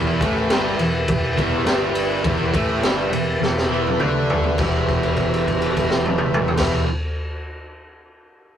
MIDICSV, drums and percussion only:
0, 0, Header, 1, 2, 480
1, 0, Start_track
1, 0, Key_signature, 1, "minor"
1, 0, Tempo, 585938
1, 1848, Time_signature, 4, 2, 24, 8
1, 7023, End_track
2, 0, Start_track
2, 0, Title_t, "Drums"
2, 171, Note_on_c, 9, 36, 120
2, 180, Note_on_c, 9, 51, 88
2, 253, Note_off_c, 9, 36, 0
2, 262, Note_off_c, 9, 51, 0
2, 410, Note_on_c, 9, 51, 121
2, 411, Note_on_c, 9, 38, 121
2, 492, Note_off_c, 9, 51, 0
2, 493, Note_off_c, 9, 38, 0
2, 648, Note_on_c, 9, 51, 71
2, 730, Note_off_c, 9, 51, 0
2, 884, Note_on_c, 9, 51, 117
2, 887, Note_on_c, 9, 36, 106
2, 966, Note_off_c, 9, 51, 0
2, 969, Note_off_c, 9, 36, 0
2, 1127, Note_on_c, 9, 36, 107
2, 1133, Note_on_c, 9, 51, 72
2, 1209, Note_off_c, 9, 36, 0
2, 1214, Note_off_c, 9, 51, 0
2, 1363, Note_on_c, 9, 51, 110
2, 1364, Note_on_c, 9, 38, 127
2, 1445, Note_off_c, 9, 51, 0
2, 1446, Note_off_c, 9, 38, 0
2, 1598, Note_on_c, 9, 51, 87
2, 1680, Note_off_c, 9, 51, 0
2, 1837, Note_on_c, 9, 51, 99
2, 1838, Note_on_c, 9, 36, 110
2, 1919, Note_off_c, 9, 51, 0
2, 1920, Note_off_c, 9, 36, 0
2, 2077, Note_on_c, 9, 36, 122
2, 2081, Note_on_c, 9, 51, 90
2, 2159, Note_off_c, 9, 36, 0
2, 2163, Note_off_c, 9, 51, 0
2, 2320, Note_on_c, 9, 51, 101
2, 2321, Note_on_c, 9, 38, 117
2, 2402, Note_off_c, 9, 38, 0
2, 2402, Note_off_c, 9, 51, 0
2, 2562, Note_on_c, 9, 51, 79
2, 2644, Note_off_c, 9, 51, 0
2, 2807, Note_on_c, 9, 38, 69
2, 2889, Note_off_c, 9, 38, 0
2, 2929, Note_on_c, 9, 38, 67
2, 3011, Note_off_c, 9, 38, 0
2, 3168, Note_on_c, 9, 48, 76
2, 3250, Note_off_c, 9, 48, 0
2, 3275, Note_on_c, 9, 47, 111
2, 3356, Note_off_c, 9, 47, 0
2, 3521, Note_on_c, 9, 43, 113
2, 3603, Note_off_c, 9, 43, 0
2, 3636, Note_on_c, 9, 43, 91
2, 3718, Note_off_c, 9, 43, 0
2, 3751, Note_on_c, 9, 49, 94
2, 3761, Note_on_c, 9, 36, 117
2, 3833, Note_off_c, 9, 49, 0
2, 3843, Note_off_c, 9, 36, 0
2, 4002, Note_on_c, 9, 36, 75
2, 4003, Note_on_c, 9, 49, 50
2, 4084, Note_off_c, 9, 36, 0
2, 4085, Note_off_c, 9, 49, 0
2, 4122, Note_on_c, 9, 57, 48
2, 4204, Note_off_c, 9, 57, 0
2, 4231, Note_on_c, 9, 49, 53
2, 4242, Note_on_c, 9, 36, 72
2, 4313, Note_off_c, 9, 49, 0
2, 4324, Note_off_c, 9, 36, 0
2, 4371, Note_on_c, 9, 57, 46
2, 4453, Note_off_c, 9, 57, 0
2, 4486, Note_on_c, 9, 36, 72
2, 4487, Note_on_c, 9, 49, 54
2, 4568, Note_off_c, 9, 36, 0
2, 4569, Note_off_c, 9, 49, 0
2, 4601, Note_on_c, 9, 57, 56
2, 4683, Note_off_c, 9, 57, 0
2, 4723, Note_on_c, 9, 49, 62
2, 4726, Note_on_c, 9, 36, 72
2, 4805, Note_off_c, 9, 49, 0
2, 4808, Note_off_c, 9, 36, 0
2, 4836, Note_on_c, 9, 38, 88
2, 4918, Note_off_c, 9, 38, 0
2, 4959, Note_on_c, 9, 48, 93
2, 5040, Note_off_c, 9, 48, 0
2, 5063, Note_on_c, 9, 47, 96
2, 5145, Note_off_c, 9, 47, 0
2, 5195, Note_on_c, 9, 45, 118
2, 5277, Note_off_c, 9, 45, 0
2, 5308, Note_on_c, 9, 43, 96
2, 5385, Note_on_c, 9, 38, 114
2, 5385, Note_on_c, 9, 49, 112
2, 5390, Note_off_c, 9, 43, 0
2, 5395, Note_on_c, 9, 36, 127
2, 5466, Note_off_c, 9, 49, 0
2, 5467, Note_off_c, 9, 38, 0
2, 5477, Note_off_c, 9, 36, 0
2, 7023, End_track
0, 0, End_of_file